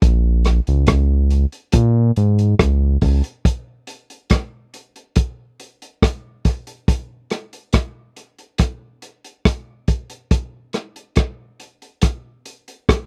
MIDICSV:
0, 0, Header, 1, 3, 480
1, 0, Start_track
1, 0, Tempo, 857143
1, 11, Time_signature, 4, 2, 24, 8
1, 7316, End_track
2, 0, Start_track
2, 0, Title_t, "Analog synth bass"
2, 0, Program_c, 0, 38
2, 14, Note_on_c, 0, 34, 101
2, 336, Note_off_c, 0, 34, 0
2, 381, Note_on_c, 0, 37, 85
2, 481, Note_off_c, 0, 37, 0
2, 494, Note_on_c, 0, 37, 94
2, 816, Note_off_c, 0, 37, 0
2, 973, Note_on_c, 0, 46, 107
2, 1185, Note_off_c, 0, 46, 0
2, 1216, Note_on_c, 0, 44, 84
2, 1427, Note_off_c, 0, 44, 0
2, 1454, Note_on_c, 0, 37, 92
2, 1666, Note_off_c, 0, 37, 0
2, 1693, Note_on_c, 0, 37, 95
2, 1803, Note_off_c, 0, 37, 0
2, 7316, End_track
3, 0, Start_track
3, 0, Title_t, "Drums"
3, 11, Note_on_c, 9, 42, 80
3, 12, Note_on_c, 9, 36, 116
3, 67, Note_off_c, 9, 42, 0
3, 68, Note_off_c, 9, 36, 0
3, 249, Note_on_c, 9, 42, 76
3, 255, Note_on_c, 9, 37, 67
3, 305, Note_off_c, 9, 42, 0
3, 311, Note_off_c, 9, 37, 0
3, 375, Note_on_c, 9, 42, 51
3, 431, Note_off_c, 9, 42, 0
3, 485, Note_on_c, 9, 42, 84
3, 492, Note_on_c, 9, 36, 108
3, 493, Note_on_c, 9, 37, 99
3, 541, Note_off_c, 9, 42, 0
3, 548, Note_off_c, 9, 36, 0
3, 549, Note_off_c, 9, 37, 0
3, 730, Note_on_c, 9, 42, 57
3, 786, Note_off_c, 9, 42, 0
3, 853, Note_on_c, 9, 42, 46
3, 909, Note_off_c, 9, 42, 0
3, 964, Note_on_c, 9, 42, 95
3, 972, Note_on_c, 9, 36, 102
3, 1020, Note_off_c, 9, 42, 0
3, 1028, Note_off_c, 9, 36, 0
3, 1211, Note_on_c, 9, 42, 65
3, 1267, Note_off_c, 9, 42, 0
3, 1336, Note_on_c, 9, 42, 53
3, 1392, Note_off_c, 9, 42, 0
3, 1452, Note_on_c, 9, 36, 113
3, 1453, Note_on_c, 9, 37, 110
3, 1459, Note_on_c, 9, 42, 88
3, 1508, Note_off_c, 9, 36, 0
3, 1509, Note_off_c, 9, 37, 0
3, 1515, Note_off_c, 9, 42, 0
3, 1688, Note_on_c, 9, 46, 73
3, 1691, Note_on_c, 9, 36, 85
3, 1744, Note_off_c, 9, 46, 0
3, 1747, Note_off_c, 9, 36, 0
3, 1813, Note_on_c, 9, 42, 59
3, 1869, Note_off_c, 9, 42, 0
3, 1932, Note_on_c, 9, 36, 106
3, 1933, Note_on_c, 9, 42, 81
3, 1988, Note_off_c, 9, 36, 0
3, 1989, Note_off_c, 9, 42, 0
3, 2168, Note_on_c, 9, 42, 73
3, 2224, Note_off_c, 9, 42, 0
3, 2296, Note_on_c, 9, 42, 51
3, 2352, Note_off_c, 9, 42, 0
3, 2407, Note_on_c, 9, 42, 84
3, 2412, Note_on_c, 9, 36, 101
3, 2415, Note_on_c, 9, 37, 98
3, 2463, Note_off_c, 9, 42, 0
3, 2468, Note_off_c, 9, 36, 0
3, 2471, Note_off_c, 9, 37, 0
3, 2653, Note_on_c, 9, 42, 60
3, 2709, Note_off_c, 9, 42, 0
3, 2776, Note_on_c, 9, 42, 45
3, 2832, Note_off_c, 9, 42, 0
3, 2887, Note_on_c, 9, 42, 92
3, 2893, Note_on_c, 9, 36, 95
3, 2943, Note_off_c, 9, 42, 0
3, 2949, Note_off_c, 9, 36, 0
3, 3134, Note_on_c, 9, 42, 63
3, 3190, Note_off_c, 9, 42, 0
3, 3259, Note_on_c, 9, 42, 51
3, 3315, Note_off_c, 9, 42, 0
3, 3374, Note_on_c, 9, 36, 108
3, 3376, Note_on_c, 9, 37, 109
3, 3382, Note_on_c, 9, 42, 87
3, 3430, Note_off_c, 9, 36, 0
3, 3432, Note_off_c, 9, 37, 0
3, 3438, Note_off_c, 9, 42, 0
3, 3611, Note_on_c, 9, 42, 74
3, 3613, Note_on_c, 9, 36, 86
3, 3667, Note_off_c, 9, 42, 0
3, 3669, Note_off_c, 9, 36, 0
3, 3735, Note_on_c, 9, 42, 52
3, 3791, Note_off_c, 9, 42, 0
3, 3853, Note_on_c, 9, 36, 114
3, 3854, Note_on_c, 9, 42, 78
3, 3909, Note_off_c, 9, 36, 0
3, 3910, Note_off_c, 9, 42, 0
3, 4090, Note_on_c, 9, 42, 75
3, 4096, Note_on_c, 9, 37, 66
3, 4146, Note_off_c, 9, 42, 0
3, 4152, Note_off_c, 9, 37, 0
3, 4216, Note_on_c, 9, 42, 52
3, 4272, Note_off_c, 9, 42, 0
3, 4327, Note_on_c, 9, 42, 83
3, 4333, Note_on_c, 9, 36, 96
3, 4335, Note_on_c, 9, 37, 94
3, 4383, Note_off_c, 9, 42, 0
3, 4389, Note_off_c, 9, 36, 0
3, 4391, Note_off_c, 9, 37, 0
3, 4572, Note_on_c, 9, 42, 60
3, 4628, Note_off_c, 9, 42, 0
3, 4696, Note_on_c, 9, 42, 43
3, 4752, Note_off_c, 9, 42, 0
3, 4806, Note_on_c, 9, 42, 97
3, 4813, Note_on_c, 9, 36, 100
3, 4814, Note_on_c, 9, 37, 58
3, 4862, Note_off_c, 9, 42, 0
3, 4869, Note_off_c, 9, 36, 0
3, 4870, Note_off_c, 9, 37, 0
3, 5052, Note_on_c, 9, 42, 69
3, 5108, Note_off_c, 9, 42, 0
3, 5177, Note_on_c, 9, 42, 54
3, 5233, Note_off_c, 9, 42, 0
3, 5294, Note_on_c, 9, 36, 106
3, 5294, Note_on_c, 9, 37, 112
3, 5300, Note_on_c, 9, 42, 86
3, 5350, Note_off_c, 9, 36, 0
3, 5350, Note_off_c, 9, 37, 0
3, 5356, Note_off_c, 9, 42, 0
3, 5531, Note_on_c, 9, 42, 70
3, 5533, Note_on_c, 9, 36, 85
3, 5587, Note_off_c, 9, 42, 0
3, 5589, Note_off_c, 9, 36, 0
3, 5654, Note_on_c, 9, 42, 54
3, 5710, Note_off_c, 9, 42, 0
3, 5773, Note_on_c, 9, 42, 82
3, 5774, Note_on_c, 9, 36, 111
3, 5829, Note_off_c, 9, 42, 0
3, 5830, Note_off_c, 9, 36, 0
3, 6010, Note_on_c, 9, 42, 72
3, 6015, Note_on_c, 9, 37, 65
3, 6066, Note_off_c, 9, 42, 0
3, 6071, Note_off_c, 9, 37, 0
3, 6137, Note_on_c, 9, 42, 51
3, 6193, Note_off_c, 9, 42, 0
3, 6248, Note_on_c, 9, 42, 79
3, 6255, Note_on_c, 9, 36, 100
3, 6256, Note_on_c, 9, 37, 88
3, 6304, Note_off_c, 9, 42, 0
3, 6311, Note_off_c, 9, 36, 0
3, 6312, Note_off_c, 9, 37, 0
3, 6494, Note_on_c, 9, 42, 58
3, 6550, Note_off_c, 9, 42, 0
3, 6619, Note_on_c, 9, 42, 44
3, 6675, Note_off_c, 9, 42, 0
3, 6728, Note_on_c, 9, 42, 98
3, 6736, Note_on_c, 9, 36, 99
3, 6736, Note_on_c, 9, 37, 63
3, 6784, Note_off_c, 9, 42, 0
3, 6792, Note_off_c, 9, 36, 0
3, 6792, Note_off_c, 9, 37, 0
3, 6975, Note_on_c, 9, 42, 66
3, 7031, Note_off_c, 9, 42, 0
3, 7100, Note_on_c, 9, 42, 53
3, 7156, Note_off_c, 9, 42, 0
3, 7217, Note_on_c, 9, 36, 110
3, 7219, Note_on_c, 9, 37, 113
3, 7225, Note_on_c, 9, 42, 86
3, 7273, Note_off_c, 9, 36, 0
3, 7275, Note_off_c, 9, 37, 0
3, 7281, Note_off_c, 9, 42, 0
3, 7316, End_track
0, 0, End_of_file